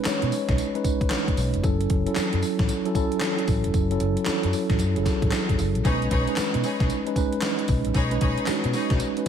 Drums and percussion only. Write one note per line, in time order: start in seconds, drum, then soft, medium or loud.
0.05 snare loud
0.05 clap medium
0.05 closed hi-hat medium
0.05 tambourine loud
0.22 closed hi-hat medium
0.32 open hi-hat medium
0.32 tambourine medium
0.49 kick loud
0.49 snare medium
0.49 closed hi-hat medium
0.58 closed hi-hat medium
0.58 tambourine medium
0.75 closed hi-hat soft
0.84 kick medium
0.84 closed hi-hat medium
0.84 tambourine medium
1.01 kick medium
1.01 closed hi-hat medium
1.10 snare loud
1.10 clap loud
1.10 closed hi-hat medium
1.10 tambourine medium
1.28 kick medium
1.28 closed hi-hat medium
1.37 open hi-hat medium
1.37 tambourine medium
1.54 closed hi-hat medium
1.64 kick loud
1.64 closed hi-hat medium
1.64 tambourine medium
1.81 closed hi-hat medium
1.90 kick loud
1.90 closed hi-hat medium
2.06 closed hi-hat medium
2.16 snare loud
2.16 clap medium
2.16 closed hi-hat medium
2.16 tambourine loud
2.33 closed hi-hat medium
2.42 open hi-hat medium
2.42 tambourine medium
2.59 kick loud
2.59 snare medium
2.59 closed hi-hat medium
2.69 closed hi-hat medium
2.69 tambourine medium
2.85 closed hi-hat soft
2.95 kick loud
2.95 closed hi-hat medium
2.95 tambourine medium
3.12 closed hi-hat medium
3.21 snare loud
3.21 clap loud
3.21 clap medium
3.21 closed hi-hat medium
3.21 tambourine medium
3.38 closed hi-hat medium
3.48 kick medium
3.48 open hi-hat medium
3.48 tambourine medium
3.64 closed hi-hat medium
3.74 kick loud
3.74 closed hi-hat medium
3.74 tambourine medium
3.91 closed hi-hat medium
4.00 closed hi-hat medium
4.17 closed hi-hat medium
4.26 snare loud
4.26 clap medium
4.26 closed hi-hat medium
4.26 tambourine loud
4.43 closed hi-hat medium
4.53 open hi-hat medium
4.53 tambourine medium
4.70 kick medium
4.70 snare medium
4.70 closed hi-hat medium
4.79 clap medium
4.79 closed hi-hat medium
4.79 tambourine medium
4.96 closed hi-hat soft
5.06 kick medium
5.06 snare medium
5.06 closed hi-hat medium
5.06 tambourine medium
5.22 kick medium
5.22 closed hi-hat medium
5.32 snare loud
5.32 clap medium
5.32 closed hi-hat medium
5.32 tambourine medium
5.49 kick medium
5.49 closed hi-hat medium
5.59 open hi-hat medium
5.59 tambourine medium
5.75 closed hi-hat medium
5.85 kick loud
5.85 closed hi-hat medium
5.85 tambourine medium
6.02 closed hi-hat medium
6.11 kick loud
6.11 closed hi-hat medium
6.28 closed hi-hat medium
6.36 snare loud
6.36 clap medium
6.36 closed hi-hat medium
6.36 tambourine loud
6.54 closed hi-hat medium
6.64 open hi-hat medium
6.64 tambourine medium
6.80 kick loud
6.80 snare medium
6.80 closed hi-hat medium
6.90 closed hi-hat medium
6.90 tambourine medium
7.07 closed hi-hat soft
7.16 kick medium
7.16 closed hi-hat medium
7.16 tambourine medium
7.33 closed hi-hat medium
7.42 snare loud
7.42 clap medium
7.42 clap loud
7.42 closed hi-hat medium
7.42 tambourine medium
7.59 closed hi-hat medium
7.68 kick loud
7.68 open hi-hat medium
7.68 tambourine medium
7.85 closed hi-hat medium
7.94 kick loud
7.94 closed hi-hat medium
7.94 tambourine medium
8.11 closed hi-hat medium
8.21 kick loud
8.21 closed hi-hat medium
8.38 closed hi-hat medium
8.47 snare loud
8.47 clap medium
8.47 closed hi-hat medium
8.47 tambourine loud
8.64 closed hi-hat medium
8.73 open hi-hat medium
8.73 tambourine medium
8.90 kick loud
8.90 snare medium
8.90 closed hi-hat medium
9.00 closed hi-hat medium
9.00 tambourine medium
9.17 closed hi-hat medium